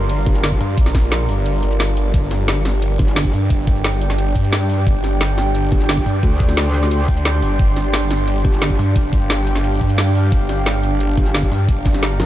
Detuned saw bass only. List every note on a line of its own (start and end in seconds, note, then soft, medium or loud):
0.00 0.25 G1 loud
0.61 0.76 G2 loud
0.78 1.27 A#1 loud
1.29 1.61 G1 medium
1.63 2.13 G1 loud
2.14 2.98 G1 loud
3.33 3.49 G2 medium
3.50 4.34 G1 loud
4.36 4.85 G2 loud
4.87 5.71 G1 loud
6.06 6.22 G2 medium
7.08 7.24 D2 loud
7.25 7.41 D2 medium
7.42 7.58 G1 loud
7.59 8.43 G1 loud
8.79 8.94 G2 loud
8.96 9.80 G1 loud
9.81 10.31 G2 loud
10.32 11.16 G1 loud
11.52 11.67 G2 loud
11.69 12.18 G1 loud